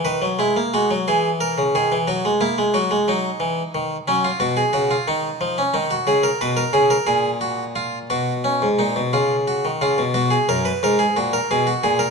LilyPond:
<<
  \new Staff \with { instrumentName = "Harpsichord" } { \time 6/8 \key b \major \tempo 4. = 59 b'8 e'8 fis'8 gis'8 ais'8 gis'8 | fis'8 e'8 fis'8 dis'4. | cis'16 eis'16 fis'16 gis'16 fis'16 eis'16 dis'8. cis'16 dis'16 fis'16 | gis'16 ais'16 b'16 ais'16 gis'16 ais'16 gis'8 fis'8 eis'8 |
fis'8 cis'8 dis'8 eis'8 fis'8 eis'8 | fis'16 gis'16 ais'16 b'16 ais'16 gis'16 fis'16 ais'16 gis'16 fis'16 gis'16 ais'16 | }
  \new Staff \with { instrumentName = "Harpsichord" } { \clef bass \time 6/8 \key b \major dis16 fis16 gis16 ais16 gis16 fis16 e8. cis16 dis16 e16 | fis16 gis16 ais16 gis16 fis16 gis16 fis8 e8 dis8 | fis8 b,8 cis8 dis8 eis8 dis8 | cis8 b,8 cis8 ais,4. |
b,8. gis,16 ais,16 b,16 cis8. dis16 cis16 b,16 | b,8 fis,8 gis,8 ais,8 b,8 ais,8 | }
>>